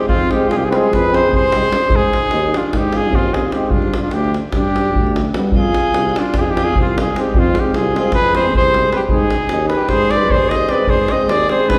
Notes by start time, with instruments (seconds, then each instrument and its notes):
0.07 tuba F2, alto saxophone C4, cornet F4, davul low
0.30 euphonium G#3, french horn C4, alto saxophone D#4, cornet G4, davul high
0.48 tuba C2, alto saxophone F4, cornet G#4, davul high
0.54 alto saxophone D#4 F4, cornet G4
0.64 alto saxophone G4, cornet G#4
0.70 euphonium G#3, french horn C4, alto saxophone F4, cornet B4, davul high
0.76 cornet G#4
0.84 alto saxophone G#4, davul high
0.91 tuba F2, cornet B4, davul high, davul low
1.11 euphonium G#3, french horn C4, alto saxophone G#4, davul high
1.15 cornet C5
1.30 tuba C2, alto saxophone G#4, davul low
1.36 cornet C5
1.44 davul high
1.52 euphonium G#3, french horn C4, davul high
1.73 davul high
1.89 tuba G#2, alto saxophone D#4, davul low
1.96 cornet G#4
2.13 davul high
2.31 tuba D#2, davul high
2.54 alto saxophone D4, cornet F4, davul high
2.63 davul high
2.72 tuba G#2, alto saxophone D#4, davul high, davul low
2.78 cornet G4
2.93 alto saxophone F4, cornet G#4, davul high
3.12 tuba D#2, alto saxophone C4, cornet F4, davul low
3.23 davul high
3.34 alto saxophone F4, cornet G#4, davul high
3.52 euphonium G#3, french horn C4, alto saxophone D#4, cornet G4, davul high
3.70 tuba G2, alto saxophone D4, cornet F4, davul low
3.82 davul high
3.94 davul high
4.02 alto saxophone D4, cornet F4, davul high
4.11 tuba D2, alto saxophone D4, cornet G4, davul high
4.24 davul high
4.34 davul high
4.52 tuba G2, alto saxophone D4, cornet G4, davul high, davul low
4.64 davul high
4.76 davul high
4.86 davul high
4.95 tuba D2, davul low
5.07 davul high
5.16 davul high
5.25 davul high
5.33 euphonium G3, french horn B3, davul high
5.52 tuba F2, alto saxophone F4, davul low
5.57 cornet G#4
5.74 davul high
5.94 tuba C2, davul high
6.16 alto saxophone D4, cornet F4, davul high
6.26 davul high
6.34 tuba F2, davul high, davul low
6.38 alto saxophone F4, cornet G4 G#4
6.46 alto saxophone D#4
6.50 cornet G4
6.57 alto saxophone F4, davul high
6.64 cornet G#4
6.76 tuba C2, alto saxophone C4, davul low
6.82 cornet F4
6.87 davul high
6.97 alto saxophone F4, davul high
7.01 cornet G#4
7.13 euphonium G#3, french horn C4, davul high
7.18 alto saxophone D#4, cornet G4
7.34 tuba F2, alto saxophone C4, davul low
7.39 cornet F4
7.53 euphonium G#3, french horn C4, davul high
7.59 alto saxophone D#4, cornet G4
7.74 tuba C2, alto saxophone F4, cornet G#4, davul high
7.94 euphonium G#3, french horn C4, alto saxophone F4, davul high
8.00 cornet G#4
8.05 davul high
8.12 tuba F2, alto saxophone G#4, cornet B4, davul high, davul low
8.35 euphonium G#3, french horn C4, cornet C5, davul high
8.39 alto saxophone G#4
8.55 tuba C2, alto saxophone G#4, cornet C5, davul low
8.65 davul high
8.73 euphonium G#3, french horn C4, davul high
8.92 cornet B4, davul high
8.97 alto saxophone G4
9.09 tuba G#2, cornet G#4, davul low
9.14 alto saxophone D#4
9.31 davul high
9.49 tuba D#2, davul high
9.69 cornet B4, davul high
9.76 alto saxophone G4, davul high
9.89 cornet C5, davul high, davul low
9.93 tuba G#2, alto saxophone G#4
10.11 cornet D5, davul high
10.17 alto saxophone B4
10.30 tuba D#2, cornet C5, davul low
10.35 alto saxophone G#4
10.41 davul high
10.49 cornet D#5, davul high
10.56 alto saxophone C5
10.67 euphonium G#3, french horn C4, cornet D5, davul high
10.71 alto saxophone B4
10.87 tuba G#2, alto saxophone G#4, cornet C5, davul low
10.99 davul high
11.08 euphonium G#3, french horn C4, cornet D#5, davul high
11.13 alto saxophone C5
11.18 davul high
11.28 tuba D#2, cornet D5, davul high
11.33 alto saxophone G#4
11.40 davul high
11.49 euphonium G#3, french horn C4, alto saxophone G#4, cornet C5, davul high
11.60 davul high
11.68 tuba G#2, alto saxophone G#4, cornet B4, davul high, davul low